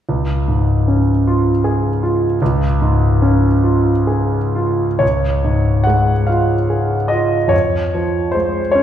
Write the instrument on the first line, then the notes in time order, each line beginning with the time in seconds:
grand piano
0.09 C#2
0.48 G#2
0.88 C#4
1.27 F4
1.64 G#4
2.03 F4
2.42 C#2
2.82 G#2
3.22 C#4
3.64 F4
4.07 G#4
4.56 F4
4.99 C#2 C#5
5.44 G#2
5.84 G#3 F#5
6.27 F4 F5
6.70 G#4
7.08 F4 D#5
7.48 F2 C#5
7.94 F3
8.32 G#3 C5
8.72 C#4 C#5